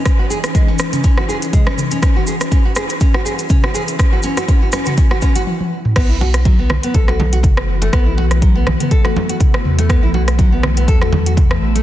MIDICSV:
0, 0, Header, 1, 5, 480
1, 0, Start_track
1, 0, Tempo, 491803
1, 59, Time_signature, 4, 2, 24, 8
1, 11543, End_track
2, 0, Start_track
2, 0, Title_t, "Nylon-string guitar"
2, 0, Program_c, 0, 24
2, 186, Note_on_c, 0, 66, 73
2, 246, Note_off_c, 0, 66, 0
2, 295, Note_on_c, 0, 68, 72
2, 368, Note_off_c, 0, 68, 0
2, 536, Note_on_c, 0, 56, 78
2, 656, Note_off_c, 0, 56, 0
2, 667, Note_on_c, 0, 61, 96
2, 766, Note_off_c, 0, 61, 0
2, 908, Note_on_c, 0, 61, 72
2, 1000, Note_off_c, 0, 61, 0
2, 1015, Note_on_c, 0, 61, 97
2, 1135, Note_off_c, 0, 61, 0
2, 1150, Note_on_c, 0, 66, 75
2, 1208, Note_off_c, 0, 66, 0
2, 1256, Note_on_c, 0, 68, 72
2, 1329, Note_off_c, 0, 68, 0
2, 1498, Note_on_c, 0, 56, 81
2, 1617, Note_off_c, 0, 56, 0
2, 1626, Note_on_c, 0, 61, 94
2, 1726, Note_off_c, 0, 61, 0
2, 1870, Note_on_c, 0, 61, 75
2, 1961, Note_off_c, 0, 61, 0
2, 1978, Note_on_c, 0, 61, 101
2, 2097, Note_off_c, 0, 61, 0
2, 2111, Note_on_c, 0, 66, 80
2, 2169, Note_off_c, 0, 66, 0
2, 2219, Note_on_c, 0, 68, 74
2, 2290, Note_off_c, 0, 68, 0
2, 2457, Note_on_c, 0, 61, 100
2, 2576, Note_off_c, 0, 61, 0
2, 2590, Note_on_c, 0, 66, 75
2, 2648, Note_off_c, 0, 66, 0
2, 2696, Note_on_c, 0, 68, 77
2, 2769, Note_off_c, 0, 68, 0
2, 2937, Note_on_c, 0, 61, 99
2, 3056, Note_off_c, 0, 61, 0
2, 3068, Note_on_c, 0, 66, 77
2, 3128, Note_off_c, 0, 66, 0
2, 3174, Note_on_c, 0, 68, 78
2, 3248, Note_off_c, 0, 68, 0
2, 3413, Note_on_c, 0, 61, 104
2, 3535, Note_off_c, 0, 61, 0
2, 3547, Note_on_c, 0, 66, 73
2, 3607, Note_off_c, 0, 66, 0
2, 3653, Note_on_c, 0, 68, 79
2, 3727, Note_off_c, 0, 68, 0
2, 3891, Note_on_c, 0, 61, 106
2, 4014, Note_off_c, 0, 61, 0
2, 4026, Note_on_c, 0, 66, 80
2, 4087, Note_off_c, 0, 66, 0
2, 4134, Note_on_c, 0, 61, 103
2, 4255, Note_off_c, 0, 61, 0
2, 4265, Note_on_c, 0, 66, 80
2, 4326, Note_off_c, 0, 66, 0
2, 4376, Note_on_c, 0, 61, 107
2, 4496, Note_off_c, 0, 61, 0
2, 4509, Note_on_c, 0, 66, 79
2, 4568, Note_off_c, 0, 66, 0
2, 4615, Note_on_c, 0, 61, 105
2, 4736, Note_off_c, 0, 61, 0
2, 4747, Note_on_c, 0, 66, 81
2, 4807, Note_off_c, 0, 66, 0
2, 4855, Note_on_c, 0, 61, 103
2, 4976, Note_off_c, 0, 61, 0
2, 4988, Note_on_c, 0, 66, 77
2, 5047, Note_off_c, 0, 66, 0
2, 5097, Note_on_c, 0, 61, 109
2, 5217, Note_off_c, 0, 61, 0
2, 5227, Note_on_c, 0, 66, 85
2, 5287, Note_off_c, 0, 66, 0
2, 5817, Note_on_c, 0, 59, 101
2, 5937, Note_off_c, 0, 59, 0
2, 5948, Note_on_c, 0, 64, 79
2, 6007, Note_off_c, 0, 64, 0
2, 6059, Note_on_c, 0, 66, 75
2, 6130, Note_off_c, 0, 66, 0
2, 6299, Note_on_c, 0, 54, 81
2, 6418, Note_off_c, 0, 54, 0
2, 6431, Note_on_c, 0, 59, 98
2, 6528, Note_off_c, 0, 59, 0
2, 6675, Note_on_c, 0, 59, 79
2, 6770, Note_off_c, 0, 59, 0
2, 6780, Note_on_c, 0, 69, 99
2, 6898, Note_off_c, 0, 69, 0
2, 6913, Note_on_c, 0, 66, 76
2, 7009, Note_off_c, 0, 66, 0
2, 7152, Note_on_c, 0, 66, 80
2, 7210, Note_off_c, 0, 66, 0
2, 7632, Note_on_c, 0, 57, 73
2, 7734, Note_off_c, 0, 57, 0
2, 7737, Note_on_c, 0, 59, 106
2, 7857, Note_off_c, 0, 59, 0
2, 7868, Note_on_c, 0, 64, 78
2, 7928, Note_off_c, 0, 64, 0
2, 7978, Note_on_c, 0, 66, 79
2, 8050, Note_off_c, 0, 66, 0
2, 8218, Note_on_c, 0, 54, 82
2, 8337, Note_off_c, 0, 54, 0
2, 8350, Note_on_c, 0, 59, 101
2, 8447, Note_off_c, 0, 59, 0
2, 8591, Note_on_c, 0, 59, 77
2, 8688, Note_off_c, 0, 59, 0
2, 8698, Note_on_c, 0, 69, 99
2, 8817, Note_off_c, 0, 69, 0
2, 8829, Note_on_c, 0, 66, 77
2, 8927, Note_off_c, 0, 66, 0
2, 9071, Note_on_c, 0, 66, 81
2, 9129, Note_off_c, 0, 66, 0
2, 9549, Note_on_c, 0, 57, 75
2, 9652, Note_off_c, 0, 57, 0
2, 9656, Note_on_c, 0, 59, 102
2, 9776, Note_off_c, 0, 59, 0
2, 9788, Note_on_c, 0, 64, 81
2, 9848, Note_off_c, 0, 64, 0
2, 9898, Note_on_c, 0, 66, 79
2, 9970, Note_off_c, 0, 66, 0
2, 10135, Note_on_c, 0, 54, 84
2, 10256, Note_off_c, 0, 54, 0
2, 10271, Note_on_c, 0, 59, 101
2, 10368, Note_off_c, 0, 59, 0
2, 10512, Note_on_c, 0, 59, 78
2, 10608, Note_off_c, 0, 59, 0
2, 10618, Note_on_c, 0, 69, 103
2, 10737, Note_off_c, 0, 69, 0
2, 10753, Note_on_c, 0, 66, 76
2, 10849, Note_off_c, 0, 66, 0
2, 10993, Note_on_c, 0, 66, 80
2, 11050, Note_off_c, 0, 66, 0
2, 11472, Note_on_c, 0, 57, 78
2, 11543, Note_off_c, 0, 57, 0
2, 11543, End_track
3, 0, Start_track
3, 0, Title_t, "Ambient pad"
3, 0, Program_c, 1, 92
3, 0, Note_on_c, 1, 52, 81
3, 0, Note_on_c, 1, 61, 78
3, 0, Note_on_c, 1, 63, 74
3, 0, Note_on_c, 1, 71, 87
3, 1939, Note_off_c, 1, 63, 0
3, 1981, Note_on_c, 1, 64, 77
3, 5297, Note_off_c, 1, 52, 0
3, 5298, Note_off_c, 1, 61, 0
3, 5302, Note_off_c, 1, 71, 0
3, 5306, Note_off_c, 1, 64, 0
3, 5819, Note_on_c, 1, 57, 75
3, 5820, Note_on_c, 1, 52, 83
3, 5821, Note_on_c, 1, 66, 91
3, 5822, Note_on_c, 1, 59, 78
3, 9621, Note_off_c, 1, 66, 0
3, 9656, Note_on_c, 1, 76, 90
3, 11543, Note_off_c, 1, 52, 0
3, 11543, Note_off_c, 1, 57, 0
3, 11543, Note_off_c, 1, 59, 0
3, 11543, Note_off_c, 1, 76, 0
3, 11543, End_track
4, 0, Start_track
4, 0, Title_t, "Sub bass"
4, 0, Program_c, 2, 38
4, 5817, Note_on_c, 2, 35, 94
4, 6625, Note_off_c, 2, 35, 0
4, 6778, Note_on_c, 2, 35, 82
4, 7258, Note_on_c, 2, 30, 98
4, 7273, Note_off_c, 2, 35, 0
4, 7701, Note_off_c, 2, 30, 0
4, 7736, Note_on_c, 2, 35, 98
4, 8544, Note_off_c, 2, 35, 0
4, 9417, Note_on_c, 2, 40, 85
4, 9745, Note_off_c, 2, 40, 0
4, 9786, Note_on_c, 2, 35, 84
4, 10618, Note_on_c, 2, 40, 88
4, 10633, Note_off_c, 2, 35, 0
4, 11301, Note_off_c, 2, 40, 0
4, 11335, Note_on_c, 2, 33, 83
4, 11543, Note_off_c, 2, 33, 0
4, 11543, End_track
5, 0, Start_track
5, 0, Title_t, "Drums"
5, 54, Note_on_c, 9, 37, 90
5, 54, Note_on_c, 9, 42, 43
5, 55, Note_on_c, 9, 36, 115
5, 62, Note_on_c, 9, 69, 37
5, 151, Note_off_c, 9, 37, 0
5, 151, Note_off_c, 9, 42, 0
5, 153, Note_off_c, 9, 36, 0
5, 160, Note_off_c, 9, 69, 0
5, 298, Note_on_c, 9, 69, 83
5, 396, Note_off_c, 9, 69, 0
5, 427, Note_on_c, 9, 37, 78
5, 427, Note_on_c, 9, 42, 53
5, 431, Note_on_c, 9, 69, 52
5, 525, Note_off_c, 9, 37, 0
5, 525, Note_off_c, 9, 42, 0
5, 529, Note_off_c, 9, 69, 0
5, 535, Note_on_c, 9, 36, 111
5, 536, Note_on_c, 9, 42, 42
5, 542, Note_on_c, 9, 69, 41
5, 632, Note_off_c, 9, 36, 0
5, 633, Note_off_c, 9, 42, 0
5, 639, Note_off_c, 9, 69, 0
5, 768, Note_on_c, 9, 69, 87
5, 776, Note_on_c, 9, 37, 91
5, 866, Note_off_c, 9, 69, 0
5, 874, Note_off_c, 9, 37, 0
5, 908, Note_on_c, 9, 42, 52
5, 908, Note_on_c, 9, 47, 83
5, 912, Note_on_c, 9, 69, 46
5, 1005, Note_off_c, 9, 42, 0
5, 1005, Note_off_c, 9, 47, 0
5, 1010, Note_off_c, 9, 69, 0
5, 1010, Note_on_c, 9, 69, 36
5, 1015, Note_on_c, 9, 36, 117
5, 1016, Note_on_c, 9, 42, 43
5, 1107, Note_off_c, 9, 69, 0
5, 1113, Note_off_c, 9, 36, 0
5, 1114, Note_off_c, 9, 42, 0
5, 1147, Note_on_c, 9, 37, 77
5, 1245, Note_off_c, 9, 37, 0
5, 1261, Note_on_c, 9, 69, 84
5, 1359, Note_off_c, 9, 69, 0
5, 1388, Note_on_c, 9, 69, 52
5, 1389, Note_on_c, 9, 42, 53
5, 1486, Note_off_c, 9, 42, 0
5, 1486, Note_off_c, 9, 69, 0
5, 1495, Note_on_c, 9, 36, 115
5, 1496, Note_on_c, 9, 42, 43
5, 1496, Note_on_c, 9, 47, 77
5, 1498, Note_on_c, 9, 69, 37
5, 1593, Note_off_c, 9, 36, 0
5, 1593, Note_off_c, 9, 42, 0
5, 1593, Note_off_c, 9, 47, 0
5, 1596, Note_off_c, 9, 69, 0
5, 1627, Note_on_c, 9, 37, 89
5, 1725, Note_off_c, 9, 37, 0
5, 1736, Note_on_c, 9, 47, 77
5, 1740, Note_on_c, 9, 69, 87
5, 1834, Note_off_c, 9, 47, 0
5, 1838, Note_off_c, 9, 69, 0
5, 1865, Note_on_c, 9, 69, 48
5, 1869, Note_on_c, 9, 42, 53
5, 1962, Note_off_c, 9, 69, 0
5, 1967, Note_off_c, 9, 42, 0
5, 1975, Note_on_c, 9, 36, 111
5, 1975, Note_on_c, 9, 69, 39
5, 1979, Note_on_c, 9, 37, 90
5, 1979, Note_on_c, 9, 42, 44
5, 2073, Note_off_c, 9, 36, 0
5, 2073, Note_off_c, 9, 69, 0
5, 2076, Note_off_c, 9, 37, 0
5, 2076, Note_off_c, 9, 42, 0
5, 2214, Note_on_c, 9, 69, 93
5, 2312, Note_off_c, 9, 69, 0
5, 2349, Note_on_c, 9, 69, 53
5, 2352, Note_on_c, 9, 37, 77
5, 2352, Note_on_c, 9, 42, 55
5, 2446, Note_off_c, 9, 69, 0
5, 2450, Note_off_c, 9, 37, 0
5, 2450, Note_off_c, 9, 42, 0
5, 2456, Note_on_c, 9, 36, 110
5, 2456, Note_on_c, 9, 69, 42
5, 2458, Note_on_c, 9, 42, 44
5, 2553, Note_off_c, 9, 36, 0
5, 2553, Note_off_c, 9, 69, 0
5, 2555, Note_off_c, 9, 42, 0
5, 2689, Note_on_c, 9, 69, 85
5, 2697, Note_on_c, 9, 37, 89
5, 2787, Note_off_c, 9, 69, 0
5, 2795, Note_off_c, 9, 37, 0
5, 2822, Note_on_c, 9, 69, 54
5, 2830, Note_on_c, 9, 42, 56
5, 2920, Note_off_c, 9, 69, 0
5, 2928, Note_off_c, 9, 42, 0
5, 2930, Note_on_c, 9, 69, 42
5, 2936, Note_on_c, 9, 36, 117
5, 2937, Note_on_c, 9, 42, 44
5, 3028, Note_off_c, 9, 69, 0
5, 3034, Note_off_c, 9, 36, 0
5, 3035, Note_off_c, 9, 42, 0
5, 3068, Note_on_c, 9, 37, 74
5, 3166, Note_off_c, 9, 37, 0
5, 3181, Note_on_c, 9, 69, 90
5, 3278, Note_off_c, 9, 69, 0
5, 3307, Note_on_c, 9, 69, 52
5, 3308, Note_on_c, 9, 42, 54
5, 3404, Note_off_c, 9, 69, 0
5, 3406, Note_off_c, 9, 42, 0
5, 3408, Note_on_c, 9, 69, 39
5, 3416, Note_on_c, 9, 36, 115
5, 3418, Note_on_c, 9, 42, 45
5, 3418, Note_on_c, 9, 47, 82
5, 3505, Note_off_c, 9, 69, 0
5, 3513, Note_off_c, 9, 36, 0
5, 3516, Note_off_c, 9, 42, 0
5, 3516, Note_off_c, 9, 47, 0
5, 3550, Note_on_c, 9, 37, 91
5, 3648, Note_off_c, 9, 37, 0
5, 3657, Note_on_c, 9, 69, 94
5, 3754, Note_off_c, 9, 69, 0
5, 3787, Note_on_c, 9, 69, 48
5, 3789, Note_on_c, 9, 42, 55
5, 3885, Note_off_c, 9, 69, 0
5, 3887, Note_off_c, 9, 42, 0
5, 3896, Note_on_c, 9, 36, 113
5, 3897, Note_on_c, 9, 69, 36
5, 3899, Note_on_c, 9, 37, 92
5, 3899, Note_on_c, 9, 42, 47
5, 3993, Note_off_c, 9, 36, 0
5, 3995, Note_off_c, 9, 69, 0
5, 3996, Note_off_c, 9, 37, 0
5, 3996, Note_off_c, 9, 42, 0
5, 4126, Note_on_c, 9, 69, 88
5, 4223, Note_off_c, 9, 69, 0
5, 4265, Note_on_c, 9, 69, 55
5, 4268, Note_on_c, 9, 37, 80
5, 4268, Note_on_c, 9, 42, 57
5, 4363, Note_off_c, 9, 69, 0
5, 4366, Note_off_c, 9, 37, 0
5, 4366, Note_off_c, 9, 42, 0
5, 4375, Note_on_c, 9, 69, 39
5, 4376, Note_on_c, 9, 36, 115
5, 4377, Note_on_c, 9, 42, 44
5, 4473, Note_off_c, 9, 36, 0
5, 4473, Note_off_c, 9, 69, 0
5, 4475, Note_off_c, 9, 42, 0
5, 4609, Note_on_c, 9, 69, 94
5, 4616, Note_on_c, 9, 37, 91
5, 4706, Note_off_c, 9, 69, 0
5, 4714, Note_off_c, 9, 37, 0
5, 4737, Note_on_c, 9, 69, 54
5, 4750, Note_on_c, 9, 42, 59
5, 4750, Note_on_c, 9, 47, 90
5, 4835, Note_off_c, 9, 69, 0
5, 4847, Note_off_c, 9, 42, 0
5, 4847, Note_off_c, 9, 47, 0
5, 4852, Note_on_c, 9, 69, 39
5, 4856, Note_on_c, 9, 36, 122
5, 4857, Note_on_c, 9, 42, 45
5, 4950, Note_off_c, 9, 69, 0
5, 4954, Note_off_c, 9, 36, 0
5, 4955, Note_off_c, 9, 42, 0
5, 4988, Note_on_c, 9, 37, 77
5, 5085, Note_off_c, 9, 37, 0
5, 5091, Note_on_c, 9, 69, 84
5, 5097, Note_on_c, 9, 36, 64
5, 5188, Note_off_c, 9, 69, 0
5, 5194, Note_off_c, 9, 36, 0
5, 5226, Note_on_c, 9, 42, 58
5, 5226, Note_on_c, 9, 69, 55
5, 5323, Note_off_c, 9, 69, 0
5, 5324, Note_off_c, 9, 42, 0
5, 5337, Note_on_c, 9, 48, 62
5, 5435, Note_off_c, 9, 48, 0
5, 5469, Note_on_c, 9, 48, 66
5, 5566, Note_off_c, 9, 48, 0
5, 5710, Note_on_c, 9, 45, 85
5, 5808, Note_off_c, 9, 45, 0
5, 5816, Note_on_c, 9, 37, 96
5, 5816, Note_on_c, 9, 42, 48
5, 5816, Note_on_c, 9, 49, 106
5, 5818, Note_on_c, 9, 36, 119
5, 5914, Note_off_c, 9, 37, 0
5, 5914, Note_off_c, 9, 42, 0
5, 5914, Note_off_c, 9, 49, 0
5, 5915, Note_off_c, 9, 36, 0
5, 6061, Note_on_c, 9, 62, 58
5, 6159, Note_off_c, 9, 62, 0
5, 6189, Note_on_c, 9, 37, 82
5, 6189, Note_on_c, 9, 42, 60
5, 6286, Note_off_c, 9, 37, 0
5, 6286, Note_off_c, 9, 42, 0
5, 6298, Note_on_c, 9, 36, 120
5, 6298, Note_on_c, 9, 42, 48
5, 6301, Note_on_c, 9, 64, 91
5, 6396, Note_off_c, 9, 36, 0
5, 6396, Note_off_c, 9, 42, 0
5, 6399, Note_off_c, 9, 64, 0
5, 6535, Note_on_c, 9, 62, 39
5, 6538, Note_on_c, 9, 37, 94
5, 6543, Note_on_c, 9, 64, 82
5, 6632, Note_off_c, 9, 62, 0
5, 6636, Note_off_c, 9, 37, 0
5, 6641, Note_off_c, 9, 64, 0
5, 6670, Note_on_c, 9, 42, 59
5, 6767, Note_off_c, 9, 42, 0
5, 6775, Note_on_c, 9, 63, 61
5, 6778, Note_on_c, 9, 42, 46
5, 6779, Note_on_c, 9, 36, 125
5, 6872, Note_off_c, 9, 63, 0
5, 6876, Note_off_c, 9, 36, 0
5, 6876, Note_off_c, 9, 42, 0
5, 6911, Note_on_c, 9, 37, 77
5, 6921, Note_on_c, 9, 62, 57
5, 7009, Note_off_c, 9, 37, 0
5, 7019, Note_off_c, 9, 62, 0
5, 7021, Note_on_c, 9, 64, 97
5, 7026, Note_on_c, 9, 63, 100
5, 7119, Note_off_c, 9, 64, 0
5, 7123, Note_off_c, 9, 63, 0
5, 7152, Note_on_c, 9, 42, 58
5, 7249, Note_off_c, 9, 42, 0
5, 7253, Note_on_c, 9, 63, 75
5, 7258, Note_on_c, 9, 36, 122
5, 7258, Note_on_c, 9, 62, 42
5, 7262, Note_on_c, 9, 42, 48
5, 7262, Note_on_c, 9, 47, 84
5, 7350, Note_off_c, 9, 63, 0
5, 7355, Note_off_c, 9, 62, 0
5, 7356, Note_off_c, 9, 36, 0
5, 7359, Note_off_c, 9, 42, 0
5, 7359, Note_off_c, 9, 47, 0
5, 7392, Note_on_c, 9, 37, 96
5, 7489, Note_off_c, 9, 37, 0
5, 7629, Note_on_c, 9, 62, 58
5, 7632, Note_on_c, 9, 42, 59
5, 7727, Note_off_c, 9, 62, 0
5, 7730, Note_off_c, 9, 42, 0
5, 7739, Note_on_c, 9, 36, 120
5, 7740, Note_on_c, 9, 37, 101
5, 7740, Note_on_c, 9, 42, 49
5, 7837, Note_off_c, 9, 36, 0
5, 7838, Note_off_c, 9, 37, 0
5, 7838, Note_off_c, 9, 42, 0
5, 7984, Note_on_c, 9, 62, 50
5, 8082, Note_off_c, 9, 62, 0
5, 8110, Note_on_c, 9, 37, 84
5, 8110, Note_on_c, 9, 42, 58
5, 8208, Note_off_c, 9, 37, 0
5, 8208, Note_off_c, 9, 42, 0
5, 8218, Note_on_c, 9, 36, 126
5, 8219, Note_on_c, 9, 42, 47
5, 8316, Note_off_c, 9, 36, 0
5, 8317, Note_off_c, 9, 42, 0
5, 8459, Note_on_c, 9, 37, 99
5, 8461, Note_on_c, 9, 63, 65
5, 8462, Note_on_c, 9, 64, 85
5, 8466, Note_on_c, 9, 62, 42
5, 8556, Note_off_c, 9, 37, 0
5, 8559, Note_off_c, 9, 63, 0
5, 8560, Note_off_c, 9, 64, 0
5, 8564, Note_off_c, 9, 62, 0
5, 8592, Note_on_c, 9, 42, 59
5, 8592, Note_on_c, 9, 47, 85
5, 8690, Note_off_c, 9, 42, 0
5, 8690, Note_off_c, 9, 47, 0
5, 8698, Note_on_c, 9, 36, 127
5, 8698, Note_on_c, 9, 42, 47
5, 8795, Note_off_c, 9, 42, 0
5, 8796, Note_off_c, 9, 36, 0
5, 8829, Note_on_c, 9, 37, 81
5, 8836, Note_on_c, 9, 62, 56
5, 8927, Note_off_c, 9, 37, 0
5, 8934, Note_off_c, 9, 62, 0
5, 8944, Note_on_c, 9, 63, 94
5, 9042, Note_off_c, 9, 63, 0
5, 9071, Note_on_c, 9, 42, 61
5, 9169, Note_off_c, 9, 42, 0
5, 9175, Note_on_c, 9, 62, 38
5, 9178, Note_on_c, 9, 36, 127
5, 9179, Note_on_c, 9, 42, 48
5, 9179, Note_on_c, 9, 47, 80
5, 9272, Note_off_c, 9, 62, 0
5, 9276, Note_off_c, 9, 36, 0
5, 9277, Note_off_c, 9, 42, 0
5, 9277, Note_off_c, 9, 47, 0
5, 9313, Note_on_c, 9, 37, 97
5, 9410, Note_off_c, 9, 37, 0
5, 9420, Note_on_c, 9, 47, 81
5, 9517, Note_off_c, 9, 47, 0
5, 9551, Note_on_c, 9, 42, 58
5, 9551, Note_on_c, 9, 62, 53
5, 9648, Note_off_c, 9, 42, 0
5, 9649, Note_off_c, 9, 62, 0
5, 9658, Note_on_c, 9, 36, 123
5, 9660, Note_on_c, 9, 37, 96
5, 9660, Note_on_c, 9, 42, 46
5, 9755, Note_off_c, 9, 36, 0
5, 9758, Note_off_c, 9, 37, 0
5, 9758, Note_off_c, 9, 42, 0
5, 9899, Note_on_c, 9, 62, 51
5, 9996, Note_off_c, 9, 62, 0
5, 10032, Note_on_c, 9, 37, 86
5, 10032, Note_on_c, 9, 42, 58
5, 10129, Note_off_c, 9, 37, 0
5, 10129, Note_off_c, 9, 42, 0
5, 10137, Note_on_c, 9, 64, 95
5, 10138, Note_on_c, 9, 36, 125
5, 10140, Note_on_c, 9, 42, 45
5, 10234, Note_off_c, 9, 64, 0
5, 10236, Note_off_c, 9, 36, 0
5, 10238, Note_off_c, 9, 42, 0
5, 10378, Note_on_c, 9, 37, 100
5, 10379, Note_on_c, 9, 62, 38
5, 10386, Note_on_c, 9, 64, 87
5, 10476, Note_off_c, 9, 37, 0
5, 10477, Note_off_c, 9, 62, 0
5, 10484, Note_off_c, 9, 64, 0
5, 10512, Note_on_c, 9, 42, 58
5, 10610, Note_off_c, 9, 42, 0
5, 10618, Note_on_c, 9, 63, 64
5, 10619, Note_on_c, 9, 36, 127
5, 10620, Note_on_c, 9, 42, 47
5, 10715, Note_off_c, 9, 63, 0
5, 10716, Note_off_c, 9, 36, 0
5, 10718, Note_off_c, 9, 42, 0
5, 10751, Note_on_c, 9, 37, 81
5, 10760, Note_on_c, 9, 62, 52
5, 10849, Note_off_c, 9, 37, 0
5, 10857, Note_off_c, 9, 62, 0
5, 10858, Note_on_c, 9, 63, 92
5, 10858, Note_on_c, 9, 64, 97
5, 10956, Note_off_c, 9, 63, 0
5, 10956, Note_off_c, 9, 64, 0
5, 10993, Note_on_c, 9, 42, 57
5, 11091, Note_off_c, 9, 42, 0
5, 11097, Note_on_c, 9, 62, 43
5, 11099, Note_on_c, 9, 36, 126
5, 11102, Note_on_c, 9, 42, 46
5, 11102, Note_on_c, 9, 47, 78
5, 11104, Note_on_c, 9, 63, 74
5, 11195, Note_off_c, 9, 62, 0
5, 11197, Note_off_c, 9, 36, 0
5, 11200, Note_off_c, 9, 42, 0
5, 11200, Note_off_c, 9, 47, 0
5, 11202, Note_off_c, 9, 63, 0
5, 11232, Note_on_c, 9, 37, 99
5, 11329, Note_off_c, 9, 37, 0
5, 11472, Note_on_c, 9, 62, 49
5, 11474, Note_on_c, 9, 42, 58
5, 11543, Note_off_c, 9, 42, 0
5, 11543, Note_off_c, 9, 62, 0
5, 11543, End_track
0, 0, End_of_file